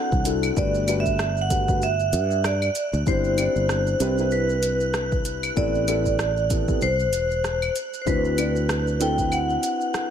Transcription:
0.00 0.22 C4 medium
0.00 0.22 D4 medium
0.00 0.22 E4 medium
0.00 0.23 F#4 medium
0.00 0.23 A4 medium
0.00 0.22 F#5 loud
0.00 10.10 F#6 medium
0.12 0.50 C2 medium
0.12 kick loud
0.12 shaker soft
0.25 0.53 C4 medium
0.25 0.53 D4 medium
0.25 0.54 E4 medium
0.25 0.54 F#4 medium
0.25 0.54 A4 medium
0.25 closed hi-hat medium
0.25 shaker medium
0.43 claves medium
0.43 shaker soft
0.56 2.14 G1 medium
0.56 0.84 A3 medium
0.56 0.85 D4 medium
0.56 0.85 F#4 medium
0.56 0.85 G4 medium
0.56 0.85 B4 loud
0.56 1.00 D5 loud
0.56 kick loud
0.56 shaker soft
0.74 shaker soft
0.87 1.14 A3 loud
0.87 1.15 D4 medium
0.87 1.15 F#4 medium
0.87 1.15 G4 medium
0.87 1.15 B4 loud
0.87 closed hi-hat medium
0.87 claves medium
0.87 shaker medium
1.00 1.42 E5 loud
1.06 kick medium
1.06 shaker soft
1.19 cross-stick loud
1.19 shaker soft
1.37 shaker soft
1.42 1.80 F#5 loud
1.49 1.64 A3 medium
1.49 1.64 D4 medium
1.49 1.64 F#4 medium
1.49 1.64 G4 medium
1.49 1.65 B4 medium
1.49 kick loud
1.49 closed hi-hat medium
1.49 shaker medium
1.67 1.82 A3 medium
1.67 1.82 D4 medium
1.67 1.82 F#4 medium
1.67 1.83 G4 medium
1.67 1.83 B4 medium
1.67 kick loud
1.67 shaker soft
1.82 2.41 E5 loud
1.82 shaker soft
2.00 shaker soft
2.13 2.69 G2 medium
2.13 closed hi-hat medium
2.13 shaker medium
2.31 shaker soft
2.44 2.91 D5 medium
2.44 cross-stick medium
2.44 shaker soft
2.62 claves medium
2.62 shaker soft
2.75 closed hi-hat medium
2.75 shaker medium
2.93 3.02 D2 medium
2.93 shaker soft
3.06 3.47 G1 medium
3.06 3.34 C4 medium
3.06 3.35 D4 medium
3.06 3.35 E4 medium
3.06 3.35 G4 medium
3.06 3.35 C5 loud
3.06 4.36 C5 loud
3.06 kick loud
3.06 shaker soft
3.24 shaker soft
3.37 3.97 C4 medium
3.37 3.97 D4 medium
3.37 3.97 E4 medium
3.37 3.98 G4 medium
3.37 3.98 D5 medium
3.37 closed hi-hat medium
3.37 claves medium
3.37 shaker medium
3.56 3.93 G1 medium
3.56 shaker soft
3.69 cross-stick medium
3.69 shaker soft
3.87 shaker soft
4.00 5.50 C2 medium
4.00 4.14 C4 loud
4.00 4.14 D4 loud
4.00 4.14 E4 medium
4.00 4.14 G4 medium
4.00 4.15 B4 loud
4.00 closed hi-hat medium
4.00 shaker medium
4.16 5.53 C4 medium
4.16 5.53 D4 medium
4.16 5.54 E4 medium
4.16 5.54 G4 medium
4.16 shaker soft
4.20 5.55 B4 loud
4.31 5.22 B4 medium
4.31 shaker soft
4.49 shaker soft
4.63 closed hi-hat medium
4.63 shaker medium
4.81 shaker soft
4.94 cross-stick loud
4.94 shaker soft
5.12 kick loud
5.12 shaker soft
5.25 closed hi-hat medium
5.25 shaker medium
5.43 claves medium
5.43 shaker soft
5.55 6.75 A1 loud
5.55 5.84 B3 loud
5.55 5.84 C4 medium
5.55 5.85 E4 medium
5.55 5.85 G4 medium
5.55 5.85 A4 loud
5.55 6.47 D5 loud
5.55 kick loud
5.55 shaker soft
5.75 shaker soft
5.87 6.14 B3 loud
5.87 6.15 C4 medium
5.87 6.15 E4 medium
5.87 6.15 G4 medium
5.87 6.15 A4 loud
5.87 closed hi-hat medium
5.87 claves medium
5.87 shaker medium
6.06 kick medium
6.06 shaker soft
6.19 cross-stick loud
6.19 shaker soft
6.37 shaker soft
6.50 6.64 B3 medium
6.50 6.64 C4 medium
6.50 6.64 E4 medium
6.50 6.64 G4 medium
6.50 6.65 A4 medium
6.50 kick loud
6.50 closed hi-hat medium
6.50 shaker medium
6.67 6.82 B3 medium
6.67 6.82 C4 medium
6.67 6.83 E4 medium
6.67 6.83 G4 medium
6.67 6.83 A4 medium
6.67 kick loud
6.67 shaker soft
6.81 7.13 C2 medium
6.81 7.72 C5 loud
6.81 shaker soft
7.00 shaker soft
7.13 7.68 E1 medium
7.13 closed hi-hat medium
7.13 shaker medium
7.31 shaker soft
7.44 cross-stick medium
7.44 shaker soft
7.62 claves medium
7.62 shaker soft
7.76 closed hi-hat medium
7.76 shaker medium
7.94 shaker soft
8.02 8.07 C5 medium
8.06 9.56 D2 loud
8.06 8.34 C4 medium
8.06 8.35 D4 medium
8.06 8.35 E4 medium
8.06 8.35 F#4 medium
8.06 9.04 B4 medium
8.06 8.35 B4 loud
8.06 kick loud
8.06 shaker soft
8.25 shaker soft
8.37 8.97 C4 medium
8.37 8.97 D4 medium
8.37 8.97 E4 medium
8.37 8.98 F#4 medium
8.37 8.98 D5 medium
8.37 closed hi-hat medium
8.37 claves medium
8.37 shaker medium
8.56 shaker soft
8.69 cross-stick loud
8.69 shaker soft
8.87 shaker soft
8.99 9.14 C4 loud
8.99 9.14 D4 medium
8.99 9.14 E4 medium
8.99 9.14 F#4 medium
8.99 9.15 A4 loud
8.99 9.33 G5 loud
8.99 closed hi-hat medium
8.99 shaker medium
9.16 10.10 C4 medium
9.16 10.10 D4 medium
9.16 10.10 E4 medium
9.16 10.10 F#4 medium
9.16 kick medium
9.16 shaker soft
9.21 10.10 B4 medium
9.32 10.10 F#5 loud
9.32 claves medium
9.32 shaker soft
9.50 shaker soft
9.63 closed hi-hat medium
9.63 shaker medium
9.81 shaker soft
9.94 cross-stick loud
9.94 shaker soft

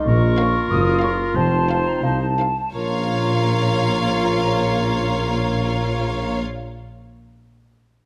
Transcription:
0.00 0.39 D#4 medium
0.07 0.58 A#1 medium
0.07 0.57 A#2 medium
0.07 1.19 A#3 medium
0.07 1.19 F4 soft
0.07 2.05 F4 medium
0.07 1.37 A#4 medium
0.07 0.70 C#6 medium
0.38 0.62 C#4 medium
0.38 0.63 A#4 medium
0.38 0.62 F5 medium
0.70 1.22 F#1 medium
0.70 1.21 F#2 medium
0.70 1.31 A#3 medium
0.70 1.02 D#6 medium
1.01 1.27 C#4 medium
1.01 1.28 A#4 soft
1.01 1.26 F5 soft
1.01 1.10 C#6 medium
1.35 1.89 F1 medium
1.35 1.89 F2 medium
1.35 2.02 C4 soft
1.35 2.37 C4 soft
1.35 2.37 D#4 soft
1.35 2.38 C5 soft
1.35 1.85 A5 medium
1.68 1.95 D#4 soft
1.68 1.95 C5 soft
1.68 1.94 F5 soft
1.87 2.04 A#5 medium
2.03 2.60 C2 medium
2.03 2.60 C2 soft
2.03 2.38 D#4 soft
2.03 2.19 F4 soft
2.03 2.73 A5 medium
2.38 2.66 D#4 soft
2.38 2.66 C5 soft
2.38 2.65 F5 soft
2.73 6.42 A#1 soft
2.73 6.42 A#2 soft
2.73 6.42 A#3 soft
2.73 6.43 C#4 soft
2.73 6.42 F4 soft
2.73 6.43 F4 soft
2.73 6.42 C#5 soft
2.73 6.42 F5 soft
2.73 6.41 A#5 medium

